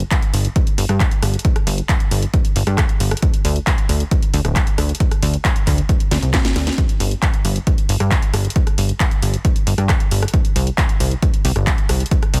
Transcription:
0.00 closed hi-hat
0.11 kick, clap, closed hi-hat
0.22 closed hi-hat
0.34 analog synth bass G1, open hi-hat
0.45 closed hi-hat
0.56 kick, closed hi-hat
0.67 closed hi-hat
0.78 analog synth bass G1, open hi-hat
0.89 analog synth bass G2, cross-stick, closed hi-hat
1.00 kick, clap, closed hi-hat
1.11 closed hi-hat
1.22 analog synth bass G1, cross-stick, open hi-hat
1.34 closed hi-hat
1.39 closed hi-hat
1.45 kick, closed hi-hat
1.56 cross-stick, closed hi-hat
1.67 analog synth bass G1, open hi-hat
1.78 closed hi-hat
1.89 kick, clap, closed hi-hat
2.00 closed hi-hat
2.11 analog synth bass G1, open hi-hat
2.22 closed hi-hat
2.34 kick, closed hi-hat
2.45 closed hi-hat
2.56 analog synth bass G1, open hi-hat
2.67 analog synth bass G2, cross-stick, closed hi-hat
2.78 kick, cross-stick, clap, closed hi-hat
2.89 closed hi-hat
3.00 analog synth bass G1, open hi-hat
3.11 cross-stick, closed hi-hat
3.17 closed hi-hat
3.22 kick, closed hi-hat
3.34 closed hi-hat
3.45 analog synth bass D2, open hi-hat
3.56 closed hi-hat
3.67 kick, clap, closed hi-hat
3.78 closed hi-hat
3.89 analog synth bass D2, open hi-hat
4.00 closed hi-hat
4.11 kick, closed hi-hat
4.23 closed hi-hat
4.34 analog synth bass D2, open hi-hat
4.45 analog synth bass D1, cross-stick, closed hi-hat
4.56 kick, clap, closed hi-hat
4.67 closed hi-hat
4.78 analog synth bass D2, cross-stick, open hi-hat
4.89 closed hi-hat
4.95 closed hi-hat
5.00 kick, closed hi-hat
5.11 cross-stick, closed hi-hat
5.22 analog synth bass D2, open hi-hat
5.34 closed hi-hat
5.45 kick, clap, closed hi-hat
5.56 closed hi-hat
5.67 analog synth bass D2, kick, clap, open hi-hat
5.78 closed hi-hat
5.89 kick, closed hi-hat
6.00 closed hi-hat
6.11 analog synth bass D2, snare, open hi-hat
6.22 analog synth bass C2, closed hi-hat
6.34 kick, snare, clap, closed hi-hat
6.45 snare, closed hi-hat
6.56 analog synth bass D2, snare, open hi-hat
6.67 snare, closed hi-hat
6.72 closed hi-hat
6.78 kick, closed hi-hat
6.89 closed hi-hat
7.00 analog synth bass G1, open hi-hat
7.11 closed hi-hat
7.22 kick, clap, closed hi-hat
7.34 closed hi-hat
7.45 analog synth bass G1, open hi-hat
7.56 closed hi-hat
7.67 kick, closed hi-hat
7.78 closed hi-hat
7.89 analog synth bass G1, open hi-hat
8.00 analog synth bass G2, cross-stick, closed hi-hat
8.11 kick, clap, closed hi-hat
8.22 closed hi-hat
8.34 analog synth bass G1, cross-stick, open hi-hat
8.45 closed hi-hat
8.50 closed hi-hat
8.56 kick, closed hi-hat
8.67 cross-stick, closed hi-hat
8.78 analog synth bass G1, open hi-hat
8.89 closed hi-hat
9.00 kick, clap, closed hi-hat
9.11 closed hi-hat
9.22 analog synth bass G1, open hi-hat
9.34 closed hi-hat
9.45 kick, closed hi-hat
9.56 closed hi-hat
9.67 analog synth bass G1, open hi-hat
9.78 analog synth bass G2, cross-stick, closed hi-hat
9.89 kick, cross-stick, clap, closed hi-hat
10.00 closed hi-hat
10.11 analog synth bass G1, open hi-hat
10.23 cross-stick, closed hi-hat
10.28 closed hi-hat
10.34 kick, closed hi-hat
10.45 closed hi-hat
10.56 analog synth bass C2, open hi-hat
10.67 closed hi-hat
10.78 kick, clap, closed hi-hat
10.89 closed hi-hat
11.00 analog synth bass C2, open hi-hat
11.11 closed hi-hat
11.22 kick, closed hi-hat
11.34 closed hi-hat
11.45 analog synth bass C2, open hi-hat
11.56 analog synth bass G1, cross-stick, closed hi-hat
11.67 kick, clap, closed hi-hat
11.78 closed hi-hat
11.89 analog synth bass C2, cross-stick, open hi-hat
12.00 closed hi-hat
12.06 closed hi-hat
12.11 kick, closed hi-hat
12.23 cross-stick, closed hi-hat
12.34 analog synth bass C2, open hi-hat

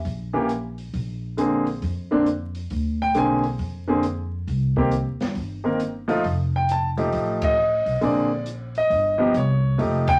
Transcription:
0.05 upright bass A#1, kick, open hi-hat
0.33 grand piano E3 A#3 C#4 G4
0.49 closed hi-hat
0.78 open hi-hat
0.93 upright bass A#1, kick, open hi-hat
1.37 grand piano D3 A#3 C4 G#4, closed hi-hat
1.67 open hi-hat
1.82 upright bass F2, kick, open hi-hat
2.11 grand piano D3 A#3 C4 D4
2.26 closed hi-hat
2.55 open hi-hat
2.70 upright bass D2, kick, open hi-hat
3.02 grand piano G5
3.15 upright bass B1, grand piano D3 A#3 C4 G#4 G#5, closed hi-hat
3.44 open hi-hat
3.59 upright bass F2, kick, open hi-hat
3.87 grand piano D3 A#3 C4 G#4
4.03 closed hi-hat
4.47 upright bass C2, kick, open hi-hat
4.76 grand piano D#3 A#3 C4 G4, kick
4.91 closed hi-hat
5.06 upright bass D#2
5.20 upright bass G2, snare, open hi-hat
5.35 upright bass G1, kick, open hi-hat
5.64 grand piano D#3 A#3 C4 A#4
5.80 closed hi-hat
6.08 grand piano F3 A3 D#4 F4, open hi-hat
6.24 upright bass F1, kick, open hi-hat
6.56 grand piano G5
6.69 grand piano A5, closed hi-hat
6.97 grand piano F3 A3 D#4 G4, open hi-hat
7.13 upright bass A1, kick, open hi-hat
7.42 grand piano D#5, kick, ride
7.86 upright bass B1, open hi-hat
8.01 upright bass A#1, grand piano D3 A#3 C4 G#4 D5, kick, open hi-hat
8.46 closed hi-hat
8.75 grand piano D#5, open hi-hat
8.90 upright bass G1, kick, open hi-hat
9.18 grand piano F3 B3 D#4 G4
9.34 upright bass C2, grand piano C#5, closed hi-hat
9.78 upright bass F1, grand piano F3 A3 D#4 G4, kick, open hi-hat
10.08 grand piano G5, kick, ride

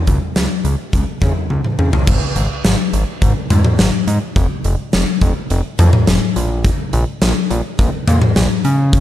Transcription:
0.07 analog synth bass C#2, kick, closed hi-hat
0.36 analog synth bass C#2, snare, closed hi-hat
0.64 analog synth bass C#2, closed hi-hat
0.93 analog synth bass C#2, kick, closed hi-hat
1.22 analog synth bass C#3, kick, closed hi-hat, mid tom
1.50 analog synth bass C#2, high tom
1.64 mid tom
1.79 analog synth bass C#3, mid tom
1.93 floor tom
2.07 analog synth bass G#1, kick, crash
2.36 analog synth bass G#1, closed hi-hat
2.64 analog synth bass G#1, snare, closed hi-hat
2.93 analog synth bass G#1, closed hi-hat
3.22 analog synth bass G#1, kick, closed hi-hat
3.50 analog synth bass G#2, closed hi-hat, mid tom
3.64 mid tom
3.79 analog synth bass G#1, snare, closed hi-hat
4.07 analog synth bass G#2, closed hi-hat
4.36 analog synth bass F1, kick, closed hi-hat
4.64 analog synth bass F1, closed hi-hat
4.93 analog synth bass F1, snare, closed hi-hat
5.21 analog synth bass F1, kick, closed hi-hat
5.50 analog synth bass F1, closed hi-hat
5.79 analog synth bass F2, closed hi-hat, mid tom
5.93 mid tom
6.07 analog synth bass F1, snare, closed hi-hat
6.36 analog synth bass A#1, closed hi-hat
6.65 kick, closed hi-hat
6.93 analog synth bass A#1, closed hi-hat
7.22 analog synth bass A#1, snare, closed hi-hat
7.50 analog synth bass A#1, closed hi-hat
7.79 analog synth bass A#1, kick, closed hi-hat
8.07 analog synth bass A#2, closed hi-hat, mid tom
8.22 mid tom
8.36 analog synth bass A#1, snare, closed hi-hat
8.64 analog synth bass C#3, closed hi-hat
8.93 kick, closed hi-hat

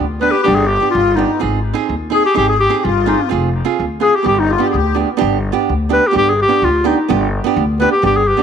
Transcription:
0.00 upright bass D2
0.21 nylon-string guitar B3 D4 G4, clarinet B4, accordion B4
0.32 clarinet G4
0.43 nylon-string guitar B3 D4 G4, clarinet G4, accordion G4
0.48 upright bass G1
0.55 clarinet G#4
0.67 clarinet G4, accordion G4
0.80 nylon-string guitar B3 D4 G4
0.91 upright bass G1, clarinet F4
0.96 accordion F4
1.16 nylon-string guitar B3 D4 G4, clarinet D#4, accordion D#4
1.40 upright bass G#1, nylon-string guitar C4 D#4 G#4
1.73 nylon-string guitar C4 D#4 G#4
1.89 upright bass D#2
2.10 nylon-string guitar C4 D#4 G#4, accordion G#4
2.15 clarinet G#4
2.26 clarinet G4
2.34 upright bass G#1, nylon-string guitar C4 D#4 G#4, accordion G4, clarinet G4
2.48 accordion G#4, clarinet G#4
2.60 clarinet G4, accordion G4
2.69 nylon-string guitar C4 D#4 G#4
2.78 accordion G4, clarinet G4
2.84 upright bass G1, clarinet F4, accordion F4
3.06 nylon-string guitar C4 D#4 G#4, clarinet D#4
3.29 upright bass F1, nylon-string guitar C4 F4 G#4
3.65 nylon-string guitar C4 F4 G#4
3.79 upright bass D2
4.00 nylon-string guitar C4 F4 G#4, clarinet G#4, accordion G#4 B4
4.15 accordion G4, clarinet G4
4.23 upright bass G1, nylon-string guitar B3 D4 G4, accordion G4
4.28 clarinet G4
4.36 accordion D#4 F4, clarinet D#4
4.49 accordion F4, clarinet F4 G4
4.58 nylon-string guitar B3 D4 G4, accordion G4
4.64 clarinet G4
4.70 accordion G#4
4.74 upright bass D2, accordion G4
4.94 nylon-string guitar B3 D4 G4
5.17 nylon-string guitar B3 D4 G4
5.22 upright bass G1
5.52 nylon-string guitar B3 D4 G4
5.69 upright bass D2
5.89 nylon-string guitar B3 D4 G4, clarinet B4
6.07 nylon-string guitar B3, clarinet G4
6.13 upright bass G1, nylon-string guitar D4 G4
6.18 clarinet G4
6.30 clarinet G#4
6.42 clarinet G4
6.48 nylon-string guitar B3 D4 G4
6.62 upright bass D2, clarinet F4
6.84 nylon-string guitar B3 D4 G4, clarinet D#4
7.08 upright bass G1, nylon-string guitar B3 D4 G4
7.44 nylon-string guitar B3 D4 G4
7.56 upright bass D2
7.80 nylon-string guitar B3 D4 G4, clarinet B4
7.92 clarinet G4
8.02 upright bass G1, nylon-string guitar B3 D4 G4, clarinet G4
8.17 clarinet G#4
8.28 clarinet G4
8.37 nylon-string guitar B3 D4 G4

